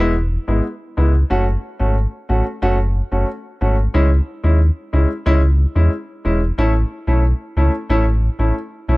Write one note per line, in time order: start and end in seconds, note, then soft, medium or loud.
0.00 0.38 E1 loud
0.00 0.12 G#3 medium
0.00 0.12 B3 medium
0.00 0.12 E4 loud
0.48 0.61 G#1 medium
0.48 0.62 G#3 medium
0.48 0.62 B3 medium
0.48 0.62 E4 medium
0.97 1.24 C#2 medium
0.97 1.11 G#3 medium
0.97 1.11 B3 medium
0.97 1.11 E4 medium
1.30 1.57 F#1 loud
1.30 1.44 A3 medium
1.30 1.44 C#4 medium
1.30 1.44 F#4 loud
1.79 2.06 G#1 loud
1.79 1.93 A3 medium
1.79 1.93 C#4 medium
1.79 1.94 F#4 medium
2.29 2.43 A1 medium
2.29 2.43 A3 medium
2.29 2.43 C#4 medium
2.29 2.43 F#4 medium
2.62 3.02 F#1 loud
2.62 2.76 A3 medium
2.62 2.76 C#4 medium
2.62 2.76 F#4 loud
3.11 3.25 F#1 medium
3.11 3.25 A3 medium
3.11 3.25 C#4 medium
3.11 3.26 F#4 medium
3.61 3.88 G#1 loud
3.61 3.75 A3 medium
3.61 3.75 C#4 medium
3.61 3.75 F#4 medium
3.94 4.21 C#2 loud
3.94 4.08 G#3 medium
3.94 4.08 C#4 medium
3.94 4.08 E4 loud
4.43 4.70 D#2 medium
4.43 4.57 G#3 medium
4.43 4.57 C#4 medium
4.43 4.58 E4 medium
4.93 5.06 C#2 medium
4.93 5.07 G#3 medium
4.93 5.07 C#4 medium
4.93 5.07 E4 medium
5.26 5.66 C#2 loud
5.26 5.40 G#3 medium
5.26 5.40 C#4 medium
5.26 5.40 E4 loud
5.75 5.89 E2 medium
5.75 5.89 G#3 medium
5.75 5.89 C#4 medium
5.75 5.89 E4 medium
6.25 6.52 E1 medium
6.25 6.38 G#3 medium
6.25 6.39 C#4 medium
6.25 6.39 E4 medium
6.58 6.84 A1 loud
6.58 6.72 A3 medium
6.58 6.72 C#4 medium
6.58 6.72 E4 loud
7.07 7.34 B1 medium
7.07 7.21 A3 medium
7.07 7.21 C#4 medium
7.07 7.21 E4 medium
7.57 7.70 C#2 medium
7.57 7.70 A3 medium
7.57 7.71 C#4 medium
7.57 7.71 E4 medium
7.89 8.29 A1 loud
7.89 8.03 A3 medium
7.89 8.04 C#4 medium
7.89 8.04 E4 loud
8.39 8.52 A1 medium
8.39 8.53 A3 medium
8.39 8.53 C#4 medium
8.39 8.53 E4 medium
8.88 8.97 B1 loud
8.88 8.97 A3 medium
8.88 8.97 C#4 medium
8.88 8.97 E4 medium